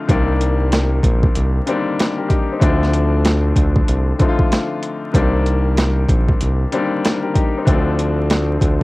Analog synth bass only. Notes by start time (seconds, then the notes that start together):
0.09 C2
1.04 A#1
1.36 C2
2.62 D2
3.56 D2
3.88 C2
5.15 C2
6.09 A#1
6.41 C2
7.67 D2
8.62 D2